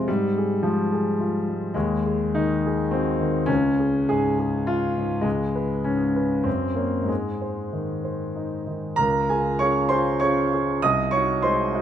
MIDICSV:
0, 0, Header, 1, 2, 480
1, 0, Start_track
1, 0, Key_signature, -5, "major"
1, 0, Tempo, 556070
1, 68, Time_signature, 3, 2, 24, 8
1, 1511, Tempo, 607903
1, 1991, Tempo, 568720
1, 2951, Tempo, 621118
1, 3431, Tempo, 566572
1, 4391, Tempo, 606061
1, 5351, Tempo, 632244
1, 7271, Tempo, 612245
1, 9487, End_track
2, 0, Start_track
2, 0, Title_t, "Grand piano"
2, 0, Program_c, 0, 0
2, 0, Control_c, 0, 64, 127
2, 0, Note_on_c, 0, 41, 44
2, 0, Note_on_c, 0, 48, 34
2, 66, Note_on_c, 0, 55, 77
2, 80, Control_c, 0, 64, 0
2, 85, Note_on_c, 0, 44, 52
2, 89, Note_off_c, 0, 41, 0
2, 90, Note_off_c, 0, 48, 0
2, 220, Control_c, 0, 64, 127
2, 325, Note_on_c, 0, 68, 41
2, 541, Note_on_c, 0, 53, 60
2, 542, Note_off_c, 0, 55, 0
2, 561, Note_on_c, 0, 56, 41
2, 699, Note_off_c, 0, 68, 0
2, 805, Note_on_c, 0, 68, 45
2, 939, Note_off_c, 0, 56, 0
2, 1037, Note_on_c, 0, 65, 44
2, 1181, Note_off_c, 0, 68, 0
2, 1266, Note_off_c, 0, 53, 0
2, 1283, Note_on_c, 0, 56, 35
2, 1418, Note_off_c, 0, 65, 0
2, 1484, Note_off_c, 0, 44, 0
2, 1490, Note_off_c, 0, 56, 0
2, 1503, Note_on_c, 0, 56, 73
2, 1518, Note_on_c, 0, 39, 58
2, 1522, Control_c, 0, 64, 0
2, 1659, Control_c, 0, 64, 127
2, 1755, Note_on_c, 0, 68, 41
2, 1981, Note_on_c, 0, 63, 74
2, 1988, Note_off_c, 0, 56, 0
2, 1994, Note_on_c, 0, 51, 40
2, 2143, Note_off_c, 0, 68, 0
2, 2248, Note_on_c, 0, 68, 47
2, 2382, Note_off_c, 0, 51, 0
2, 2457, Note_on_c, 0, 60, 68
2, 2470, Note_off_c, 0, 63, 0
2, 2473, Note_on_c, 0, 66, 40
2, 2623, Note_off_c, 0, 68, 0
2, 2705, Note_on_c, 0, 51, 43
2, 2853, Note_off_c, 0, 66, 0
2, 2920, Note_off_c, 0, 39, 0
2, 2921, Note_on_c, 0, 61, 86
2, 2933, Note_on_c, 0, 37, 57
2, 2941, Note_off_c, 0, 60, 0
2, 2947, Note_off_c, 0, 51, 0
2, 2964, Control_c, 0, 64, 0
2, 3096, Control_c, 0, 64, 127
2, 3182, Note_on_c, 0, 68, 43
2, 3398, Note_off_c, 0, 68, 0
2, 3409, Note_on_c, 0, 68, 80
2, 3417, Note_off_c, 0, 61, 0
2, 3424, Note_on_c, 0, 44, 42
2, 3654, Note_off_c, 0, 68, 0
2, 3667, Note_on_c, 0, 68, 46
2, 3820, Note_off_c, 0, 44, 0
2, 3899, Note_on_c, 0, 65, 82
2, 4052, Note_off_c, 0, 68, 0
2, 4157, Note_on_c, 0, 44, 38
2, 4348, Note_off_c, 0, 37, 0
2, 4360, Note_on_c, 0, 56, 73
2, 4380, Note_on_c, 0, 37, 49
2, 4381, Note_off_c, 0, 65, 0
2, 4392, Note_off_c, 0, 44, 0
2, 4402, Control_c, 0, 64, 0
2, 4514, Control_c, 0, 64, 127
2, 4631, Note_on_c, 0, 71, 40
2, 4861, Note_on_c, 0, 61, 69
2, 4862, Note_off_c, 0, 56, 0
2, 4881, Note_on_c, 0, 44, 40
2, 5020, Note_off_c, 0, 71, 0
2, 5110, Note_on_c, 0, 71, 43
2, 5257, Note_off_c, 0, 44, 0
2, 5316, Note_off_c, 0, 37, 0
2, 5329, Note_on_c, 0, 60, 64
2, 5342, Note_off_c, 0, 61, 0
2, 5344, Note_on_c, 0, 42, 47
2, 5349, Note_off_c, 0, 71, 0
2, 5364, Control_c, 0, 64, 0
2, 5499, Control_c, 0, 64, 127
2, 5569, Note_on_c, 0, 58, 55
2, 5576, Note_off_c, 0, 60, 0
2, 5583, Note_on_c, 0, 70, 33
2, 5587, Note_on_c, 0, 73, 32
2, 5783, Note_on_c, 0, 44, 45
2, 5802, Note_off_c, 0, 70, 0
2, 5805, Note_off_c, 0, 73, 0
2, 5811, Note_off_c, 0, 42, 0
2, 5820, Note_off_c, 0, 58, 0
2, 5820, Note_on_c, 0, 56, 63
2, 5844, Control_c, 0, 64, 0
2, 5959, Control_c, 0, 64, 127
2, 6074, Note_on_c, 0, 72, 33
2, 6312, Note_on_c, 0, 51, 35
2, 6458, Note_off_c, 0, 72, 0
2, 6551, Note_on_c, 0, 72, 36
2, 6692, Note_off_c, 0, 51, 0
2, 6787, Note_on_c, 0, 63, 34
2, 6931, Note_off_c, 0, 72, 0
2, 7025, Note_off_c, 0, 56, 0
2, 7028, Note_on_c, 0, 51, 30
2, 7174, Note_off_c, 0, 63, 0
2, 7217, Note_off_c, 0, 44, 0
2, 7249, Note_on_c, 0, 82, 90
2, 7258, Note_on_c, 0, 70, 67
2, 7265, Note_on_c, 0, 37, 59
2, 7270, Note_off_c, 0, 51, 0
2, 7282, Control_c, 0, 64, 0
2, 7410, Control_c, 0, 64, 127
2, 7491, Note_off_c, 0, 70, 0
2, 7504, Note_off_c, 0, 82, 0
2, 7505, Note_off_c, 0, 37, 0
2, 7508, Note_on_c, 0, 80, 65
2, 7513, Note_on_c, 0, 68, 47
2, 7521, Note_on_c, 0, 65, 42
2, 7734, Note_off_c, 0, 65, 0
2, 7737, Note_off_c, 0, 68, 0
2, 7741, Note_on_c, 0, 85, 81
2, 7749, Note_on_c, 0, 73, 61
2, 7752, Note_off_c, 0, 80, 0
2, 7754, Note_on_c, 0, 61, 41
2, 7758, Note_on_c, 0, 65, 46
2, 7762, Note_on_c, 0, 68, 51
2, 7969, Note_off_c, 0, 61, 0
2, 7971, Note_off_c, 0, 65, 0
2, 7973, Note_off_c, 0, 68, 0
2, 7973, Note_off_c, 0, 73, 0
2, 7974, Note_on_c, 0, 84, 86
2, 7984, Note_on_c, 0, 72, 68
2, 7986, Note_off_c, 0, 85, 0
2, 7991, Note_on_c, 0, 65, 48
2, 7995, Note_on_c, 0, 68, 53
2, 8208, Note_off_c, 0, 65, 0
2, 8210, Note_off_c, 0, 68, 0
2, 8212, Note_off_c, 0, 72, 0
2, 8216, Note_on_c, 0, 85, 88
2, 8224, Note_off_c, 0, 84, 0
2, 8224, Note_on_c, 0, 73, 65
2, 8232, Note_on_c, 0, 61, 43
2, 8236, Note_on_c, 0, 65, 47
2, 8242, Note_on_c, 0, 68, 50
2, 8450, Note_off_c, 0, 61, 0
2, 8452, Note_off_c, 0, 65, 0
2, 8455, Note_off_c, 0, 68, 0
2, 8478, Note_on_c, 0, 68, 45
2, 8479, Note_on_c, 0, 65, 42
2, 8679, Note_off_c, 0, 73, 0
2, 8692, Note_off_c, 0, 68, 0
2, 8693, Note_off_c, 0, 65, 0
2, 8706, Note_off_c, 0, 85, 0
2, 8708, Note_on_c, 0, 87, 96
2, 8716, Note_on_c, 0, 75, 71
2, 8720, Note_on_c, 0, 36, 62
2, 8729, Control_c, 0, 64, 0
2, 8840, Control_c, 0, 64, 127
2, 8933, Note_on_c, 0, 85, 83
2, 8937, Note_off_c, 0, 75, 0
2, 8942, Note_on_c, 0, 73, 62
2, 8948, Note_off_c, 0, 36, 0
2, 8949, Note_off_c, 0, 87, 0
2, 8950, Note_on_c, 0, 63, 44
2, 8954, Note_on_c, 0, 66, 49
2, 9166, Note_off_c, 0, 63, 0
2, 9169, Note_off_c, 0, 66, 0
2, 9169, Note_off_c, 0, 73, 0
2, 9179, Note_on_c, 0, 84, 79
2, 9182, Note_off_c, 0, 85, 0
2, 9188, Note_on_c, 0, 72, 64
2, 9191, Note_on_c, 0, 56, 43
2, 9191, Note_on_c, 0, 63, 45
2, 9197, Note_on_c, 0, 66, 47
2, 9406, Note_off_c, 0, 56, 0
2, 9406, Note_off_c, 0, 63, 0
2, 9409, Note_off_c, 0, 66, 0
2, 9424, Note_on_c, 0, 63, 49
2, 9431, Note_on_c, 0, 66, 56
2, 9487, Note_off_c, 0, 63, 0
2, 9487, Note_off_c, 0, 66, 0
2, 9487, Note_off_c, 0, 72, 0
2, 9487, Note_off_c, 0, 84, 0
2, 9487, End_track
0, 0, End_of_file